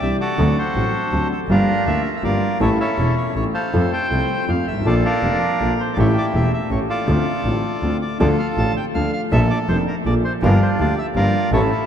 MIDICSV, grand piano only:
0, 0, Header, 1, 2, 480
1, 0, Start_track
1, 0, Key_signature, -1, "minor"
1, 0, Tempo, 371287
1, 499, Time_signature, 3, 2, 24, 8
1, 15336, End_track
2, 0, Start_track
2, 0, Title_t, "Grand piano"
2, 0, Program_c, 0, 0
2, 22, Note_on_c, 0, 36, 47
2, 23, Note_on_c, 0, 52, 44
2, 23, Note_on_c, 0, 60, 41
2, 24, Note_on_c, 0, 48, 54
2, 27, Note_on_c, 0, 62, 40
2, 30, Note_on_c, 0, 67, 52
2, 222, Note_off_c, 0, 36, 0
2, 223, Note_off_c, 0, 48, 0
2, 223, Note_off_c, 0, 52, 0
2, 223, Note_off_c, 0, 60, 0
2, 225, Note_off_c, 0, 62, 0
2, 226, Note_off_c, 0, 67, 0
2, 492, Note_on_c, 0, 54, 62
2, 497, Note_on_c, 0, 38, 79
2, 497, Note_on_c, 0, 60, 58
2, 500, Note_on_c, 0, 50, 83
2, 500, Note_on_c, 0, 69, 68
2, 501, Note_on_c, 0, 62, 59
2, 697, Note_off_c, 0, 54, 0
2, 700, Note_off_c, 0, 38, 0
2, 700, Note_off_c, 0, 60, 0
2, 701, Note_off_c, 0, 50, 0
2, 701, Note_off_c, 0, 69, 0
2, 702, Note_off_c, 0, 62, 0
2, 972, Note_on_c, 0, 45, 51
2, 973, Note_on_c, 0, 54, 44
2, 973, Note_on_c, 0, 60, 39
2, 975, Note_on_c, 0, 33, 47
2, 977, Note_on_c, 0, 62, 36
2, 978, Note_on_c, 0, 69, 44
2, 1176, Note_off_c, 0, 45, 0
2, 1177, Note_off_c, 0, 54, 0
2, 1177, Note_off_c, 0, 60, 0
2, 1178, Note_off_c, 0, 33, 0
2, 1179, Note_off_c, 0, 62, 0
2, 1179, Note_off_c, 0, 69, 0
2, 1454, Note_on_c, 0, 54, 42
2, 1460, Note_on_c, 0, 38, 53
2, 1460, Note_on_c, 0, 60, 42
2, 1461, Note_on_c, 0, 50, 51
2, 1461, Note_on_c, 0, 62, 39
2, 1462, Note_on_c, 0, 69, 51
2, 1656, Note_off_c, 0, 54, 0
2, 1659, Note_off_c, 0, 38, 0
2, 1659, Note_off_c, 0, 50, 0
2, 1659, Note_off_c, 0, 60, 0
2, 1660, Note_off_c, 0, 62, 0
2, 1660, Note_off_c, 0, 69, 0
2, 1934, Note_on_c, 0, 31, 82
2, 1935, Note_on_c, 0, 53, 69
2, 1937, Note_on_c, 0, 58, 59
2, 1939, Note_on_c, 0, 62, 64
2, 1940, Note_on_c, 0, 67, 72
2, 1941, Note_on_c, 0, 43, 89
2, 2134, Note_off_c, 0, 31, 0
2, 2135, Note_off_c, 0, 53, 0
2, 2136, Note_off_c, 0, 58, 0
2, 2137, Note_off_c, 0, 62, 0
2, 2138, Note_off_c, 0, 43, 0
2, 2138, Note_off_c, 0, 67, 0
2, 2417, Note_on_c, 0, 53, 44
2, 2417, Note_on_c, 0, 58, 41
2, 2420, Note_on_c, 0, 38, 54
2, 2421, Note_on_c, 0, 62, 44
2, 2422, Note_on_c, 0, 50, 52
2, 2423, Note_on_c, 0, 67, 48
2, 2614, Note_off_c, 0, 53, 0
2, 2615, Note_off_c, 0, 58, 0
2, 2616, Note_off_c, 0, 38, 0
2, 2617, Note_off_c, 0, 50, 0
2, 2617, Note_off_c, 0, 62, 0
2, 2618, Note_off_c, 0, 67, 0
2, 2882, Note_on_c, 0, 53, 45
2, 2884, Note_on_c, 0, 58, 38
2, 2887, Note_on_c, 0, 31, 54
2, 2891, Note_on_c, 0, 43, 54
2, 2892, Note_on_c, 0, 62, 41
2, 2897, Note_on_c, 0, 67, 51
2, 3087, Note_off_c, 0, 53, 0
2, 3088, Note_off_c, 0, 58, 0
2, 3090, Note_off_c, 0, 31, 0
2, 3091, Note_off_c, 0, 43, 0
2, 3092, Note_off_c, 0, 62, 0
2, 3094, Note_off_c, 0, 67, 0
2, 3363, Note_on_c, 0, 52, 74
2, 3364, Note_on_c, 0, 57, 62
2, 3368, Note_on_c, 0, 33, 82
2, 3368, Note_on_c, 0, 45, 81
2, 3368, Note_on_c, 0, 61, 59
2, 3371, Note_on_c, 0, 69, 78
2, 3567, Note_off_c, 0, 52, 0
2, 3568, Note_off_c, 0, 57, 0
2, 3570, Note_off_c, 0, 33, 0
2, 3570, Note_off_c, 0, 45, 0
2, 3570, Note_off_c, 0, 61, 0
2, 3571, Note_off_c, 0, 69, 0
2, 3843, Note_on_c, 0, 52, 42
2, 3844, Note_on_c, 0, 40, 46
2, 3848, Note_on_c, 0, 28, 53
2, 3848, Note_on_c, 0, 57, 40
2, 3851, Note_on_c, 0, 61, 37
2, 3855, Note_on_c, 0, 69, 45
2, 4050, Note_off_c, 0, 40, 0
2, 4050, Note_off_c, 0, 52, 0
2, 4052, Note_off_c, 0, 28, 0
2, 4052, Note_off_c, 0, 57, 0
2, 4054, Note_off_c, 0, 61, 0
2, 4056, Note_off_c, 0, 69, 0
2, 4333, Note_on_c, 0, 52, 45
2, 4338, Note_on_c, 0, 45, 50
2, 4338, Note_on_c, 0, 57, 39
2, 4338, Note_on_c, 0, 61, 41
2, 4338, Note_on_c, 0, 69, 49
2, 4339, Note_on_c, 0, 33, 48
2, 4540, Note_off_c, 0, 52, 0
2, 4543, Note_off_c, 0, 33, 0
2, 4543, Note_off_c, 0, 45, 0
2, 4543, Note_off_c, 0, 57, 0
2, 4543, Note_off_c, 0, 61, 0
2, 4543, Note_off_c, 0, 69, 0
2, 4826, Note_on_c, 0, 57, 59
2, 4827, Note_on_c, 0, 41, 77
2, 4828, Note_on_c, 0, 53, 73
2, 4831, Note_on_c, 0, 60, 58
2, 4831, Note_on_c, 0, 69, 74
2, 5031, Note_off_c, 0, 57, 0
2, 5032, Note_off_c, 0, 41, 0
2, 5033, Note_off_c, 0, 53, 0
2, 5034, Note_off_c, 0, 60, 0
2, 5034, Note_off_c, 0, 69, 0
2, 5309, Note_on_c, 0, 57, 36
2, 5311, Note_on_c, 0, 53, 41
2, 5313, Note_on_c, 0, 48, 49
2, 5315, Note_on_c, 0, 60, 42
2, 5316, Note_on_c, 0, 36, 43
2, 5320, Note_on_c, 0, 69, 46
2, 5515, Note_off_c, 0, 57, 0
2, 5517, Note_off_c, 0, 53, 0
2, 5518, Note_off_c, 0, 48, 0
2, 5518, Note_off_c, 0, 60, 0
2, 5519, Note_off_c, 0, 36, 0
2, 5521, Note_off_c, 0, 69, 0
2, 5798, Note_on_c, 0, 41, 49
2, 5799, Note_on_c, 0, 53, 52
2, 5799, Note_on_c, 0, 57, 39
2, 5801, Note_on_c, 0, 60, 38
2, 5803, Note_on_c, 0, 69, 45
2, 6000, Note_off_c, 0, 41, 0
2, 6001, Note_off_c, 0, 57, 0
2, 6002, Note_off_c, 0, 60, 0
2, 6003, Note_off_c, 0, 53, 0
2, 6003, Note_off_c, 0, 69, 0
2, 6101, Note_on_c, 0, 31, 47
2, 6160, Note_off_c, 0, 31, 0
2, 6166, Note_on_c, 0, 32, 54
2, 6222, Note_on_c, 0, 33, 65
2, 6223, Note_off_c, 0, 32, 0
2, 6278, Note_on_c, 0, 53, 64
2, 6280, Note_on_c, 0, 34, 77
2, 6280, Note_on_c, 0, 46, 80
2, 6280, Note_on_c, 0, 58, 64
2, 6281, Note_off_c, 0, 33, 0
2, 6284, Note_on_c, 0, 62, 65
2, 6285, Note_on_c, 0, 69, 78
2, 6482, Note_off_c, 0, 46, 0
2, 6482, Note_off_c, 0, 53, 0
2, 6482, Note_off_c, 0, 58, 0
2, 6483, Note_off_c, 0, 34, 0
2, 6485, Note_off_c, 0, 62, 0
2, 6485, Note_off_c, 0, 69, 0
2, 6758, Note_on_c, 0, 58, 42
2, 6759, Note_on_c, 0, 62, 36
2, 6760, Note_on_c, 0, 53, 47
2, 6761, Note_on_c, 0, 29, 50
2, 6761, Note_on_c, 0, 41, 49
2, 6762, Note_on_c, 0, 69, 49
2, 6963, Note_off_c, 0, 58, 0
2, 6964, Note_off_c, 0, 53, 0
2, 6964, Note_off_c, 0, 62, 0
2, 6965, Note_off_c, 0, 29, 0
2, 6965, Note_off_c, 0, 41, 0
2, 6966, Note_off_c, 0, 69, 0
2, 7233, Note_on_c, 0, 53, 45
2, 7235, Note_on_c, 0, 58, 44
2, 7237, Note_on_c, 0, 34, 54
2, 7237, Note_on_c, 0, 46, 54
2, 7240, Note_on_c, 0, 62, 39
2, 7244, Note_on_c, 0, 69, 53
2, 7438, Note_off_c, 0, 53, 0
2, 7439, Note_off_c, 0, 58, 0
2, 7440, Note_off_c, 0, 34, 0
2, 7440, Note_off_c, 0, 46, 0
2, 7442, Note_off_c, 0, 62, 0
2, 7443, Note_off_c, 0, 69, 0
2, 7713, Note_on_c, 0, 52, 73
2, 7714, Note_on_c, 0, 33, 87
2, 7716, Note_on_c, 0, 57, 69
2, 7717, Note_on_c, 0, 61, 67
2, 7720, Note_on_c, 0, 45, 89
2, 7720, Note_on_c, 0, 67, 75
2, 7916, Note_off_c, 0, 52, 0
2, 7917, Note_off_c, 0, 33, 0
2, 7917, Note_off_c, 0, 57, 0
2, 7918, Note_off_c, 0, 61, 0
2, 7919, Note_off_c, 0, 45, 0
2, 7920, Note_off_c, 0, 67, 0
2, 8191, Note_on_c, 0, 52, 45
2, 8192, Note_on_c, 0, 57, 41
2, 8195, Note_on_c, 0, 40, 51
2, 8196, Note_on_c, 0, 28, 54
2, 8197, Note_on_c, 0, 61, 42
2, 8200, Note_on_c, 0, 67, 53
2, 8392, Note_off_c, 0, 52, 0
2, 8392, Note_off_c, 0, 57, 0
2, 8394, Note_off_c, 0, 28, 0
2, 8394, Note_off_c, 0, 40, 0
2, 8395, Note_off_c, 0, 61, 0
2, 8396, Note_off_c, 0, 67, 0
2, 8659, Note_on_c, 0, 57, 40
2, 8660, Note_on_c, 0, 45, 52
2, 8661, Note_on_c, 0, 52, 45
2, 8661, Note_on_c, 0, 61, 44
2, 8664, Note_on_c, 0, 33, 55
2, 8670, Note_on_c, 0, 67, 51
2, 8864, Note_off_c, 0, 57, 0
2, 8865, Note_off_c, 0, 45, 0
2, 8865, Note_off_c, 0, 52, 0
2, 8865, Note_off_c, 0, 61, 0
2, 8867, Note_off_c, 0, 33, 0
2, 8870, Note_off_c, 0, 67, 0
2, 9144, Note_on_c, 0, 50, 85
2, 9146, Note_on_c, 0, 57, 64
2, 9147, Note_on_c, 0, 38, 82
2, 9148, Note_on_c, 0, 60, 60
2, 9154, Note_on_c, 0, 65, 77
2, 9347, Note_off_c, 0, 57, 0
2, 9348, Note_off_c, 0, 38, 0
2, 9348, Note_off_c, 0, 50, 0
2, 9348, Note_off_c, 0, 60, 0
2, 9351, Note_off_c, 0, 65, 0
2, 9628, Note_on_c, 0, 33, 48
2, 9628, Note_on_c, 0, 50, 40
2, 9628, Note_on_c, 0, 57, 39
2, 9629, Note_on_c, 0, 45, 47
2, 9632, Note_on_c, 0, 60, 37
2, 9633, Note_on_c, 0, 65, 44
2, 9830, Note_off_c, 0, 33, 0
2, 9830, Note_off_c, 0, 50, 0
2, 9830, Note_off_c, 0, 57, 0
2, 9831, Note_off_c, 0, 45, 0
2, 9833, Note_off_c, 0, 60, 0
2, 9833, Note_off_c, 0, 65, 0
2, 10120, Note_on_c, 0, 50, 50
2, 10123, Note_on_c, 0, 57, 41
2, 10124, Note_on_c, 0, 38, 50
2, 10124, Note_on_c, 0, 60, 40
2, 10127, Note_on_c, 0, 65, 48
2, 10320, Note_off_c, 0, 50, 0
2, 10321, Note_off_c, 0, 38, 0
2, 10321, Note_off_c, 0, 57, 0
2, 10321, Note_off_c, 0, 60, 0
2, 10323, Note_off_c, 0, 65, 0
2, 10596, Note_on_c, 0, 53, 73
2, 10601, Note_on_c, 0, 38, 84
2, 10601, Note_on_c, 0, 57, 65
2, 10603, Note_on_c, 0, 62, 62
2, 10605, Note_on_c, 0, 69, 82
2, 10606, Note_on_c, 0, 50, 96
2, 10800, Note_off_c, 0, 53, 0
2, 10802, Note_off_c, 0, 38, 0
2, 10803, Note_off_c, 0, 57, 0
2, 10803, Note_off_c, 0, 62, 0
2, 10804, Note_off_c, 0, 69, 0
2, 10805, Note_off_c, 0, 50, 0
2, 11092, Note_on_c, 0, 53, 49
2, 11095, Note_on_c, 0, 33, 59
2, 11095, Note_on_c, 0, 45, 55
2, 11096, Note_on_c, 0, 57, 42
2, 11097, Note_on_c, 0, 62, 43
2, 11101, Note_on_c, 0, 69, 54
2, 11290, Note_off_c, 0, 53, 0
2, 11291, Note_off_c, 0, 45, 0
2, 11292, Note_off_c, 0, 33, 0
2, 11292, Note_off_c, 0, 57, 0
2, 11293, Note_off_c, 0, 62, 0
2, 11295, Note_off_c, 0, 69, 0
2, 11571, Note_on_c, 0, 53, 47
2, 11572, Note_on_c, 0, 57, 49
2, 11573, Note_on_c, 0, 38, 57
2, 11575, Note_on_c, 0, 62, 48
2, 11576, Note_on_c, 0, 50, 58
2, 11580, Note_on_c, 0, 69, 57
2, 11770, Note_off_c, 0, 53, 0
2, 11770, Note_off_c, 0, 57, 0
2, 11771, Note_off_c, 0, 38, 0
2, 11772, Note_off_c, 0, 50, 0
2, 11772, Note_off_c, 0, 62, 0
2, 11774, Note_off_c, 0, 69, 0
2, 12046, Note_on_c, 0, 46, 93
2, 12048, Note_on_c, 0, 34, 96
2, 12048, Note_on_c, 0, 58, 72
2, 12049, Note_on_c, 0, 53, 80
2, 12051, Note_on_c, 0, 62, 73
2, 12052, Note_on_c, 0, 69, 89
2, 12246, Note_off_c, 0, 34, 0
2, 12246, Note_off_c, 0, 46, 0
2, 12247, Note_off_c, 0, 53, 0
2, 12247, Note_off_c, 0, 58, 0
2, 12248, Note_off_c, 0, 62, 0
2, 12249, Note_off_c, 0, 69, 0
2, 12518, Note_on_c, 0, 53, 49
2, 12521, Note_on_c, 0, 29, 59
2, 12521, Note_on_c, 0, 41, 57
2, 12524, Note_on_c, 0, 58, 46
2, 12524, Note_on_c, 0, 69, 54
2, 12525, Note_on_c, 0, 62, 41
2, 12720, Note_off_c, 0, 53, 0
2, 12721, Note_off_c, 0, 29, 0
2, 12722, Note_off_c, 0, 41, 0
2, 12723, Note_off_c, 0, 58, 0
2, 12723, Note_off_c, 0, 62, 0
2, 12723, Note_off_c, 0, 69, 0
2, 12999, Note_on_c, 0, 53, 54
2, 13003, Note_on_c, 0, 62, 52
2, 13004, Note_on_c, 0, 46, 63
2, 13004, Note_on_c, 0, 58, 50
2, 13005, Note_on_c, 0, 34, 63
2, 13010, Note_on_c, 0, 69, 63
2, 13199, Note_off_c, 0, 53, 0
2, 13202, Note_off_c, 0, 46, 0
2, 13202, Note_off_c, 0, 58, 0
2, 13202, Note_off_c, 0, 62, 0
2, 13203, Note_off_c, 0, 34, 0
2, 13205, Note_off_c, 0, 69, 0
2, 13473, Note_on_c, 0, 53, 89
2, 13476, Note_on_c, 0, 31, 96
2, 13478, Note_on_c, 0, 58, 75
2, 13480, Note_on_c, 0, 43, 98
2, 13480, Note_on_c, 0, 62, 73
2, 13486, Note_on_c, 0, 67, 93
2, 13674, Note_off_c, 0, 53, 0
2, 13676, Note_off_c, 0, 31, 0
2, 13676, Note_off_c, 0, 58, 0
2, 13677, Note_off_c, 0, 43, 0
2, 13677, Note_off_c, 0, 62, 0
2, 13680, Note_off_c, 0, 67, 0
2, 13946, Note_on_c, 0, 38, 63
2, 13946, Note_on_c, 0, 53, 46
2, 13948, Note_on_c, 0, 50, 58
2, 13952, Note_on_c, 0, 58, 46
2, 13954, Note_on_c, 0, 62, 48
2, 13954, Note_on_c, 0, 67, 57
2, 14148, Note_off_c, 0, 38, 0
2, 14148, Note_off_c, 0, 53, 0
2, 14150, Note_off_c, 0, 50, 0
2, 14151, Note_off_c, 0, 58, 0
2, 14152, Note_off_c, 0, 67, 0
2, 14153, Note_off_c, 0, 62, 0
2, 14424, Note_on_c, 0, 53, 55
2, 14425, Note_on_c, 0, 58, 48
2, 14426, Note_on_c, 0, 31, 59
2, 14427, Note_on_c, 0, 43, 64
2, 14429, Note_on_c, 0, 62, 49
2, 14429, Note_on_c, 0, 67, 59
2, 14624, Note_off_c, 0, 53, 0
2, 14624, Note_off_c, 0, 58, 0
2, 14625, Note_off_c, 0, 31, 0
2, 14625, Note_off_c, 0, 43, 0
2, 14626, Note_off_c, 0, 62, 0
2, 14626, Note_off_c, 0, 67, 0
2, 14897, Note_on_c, 0, 45, 91
2, 14897, Note_on_c, 0, 52, 80
2, 14898, Note_on_c, 0, 57, 65
2, 14902, Note_on_c, 0, 33, 83
2, 14903, Note_on_c, 0, 61, 73
2, 14903, Note_on_c, 0, 69, 87
2, 15097, Note_off_c, 0, 45, 0
2, 15097, Note_off_c, 0, 52, 0
2, 15098, Note_off_c, 0, 57, 0
2, 15100, Note_off_c, 0, 33, 0
2, 15100, Note_off_c, 0, 61, 0
2, 15101, Note_off_c, 0, 69, 0
2, 15336, End_track
0, 0, End_of_file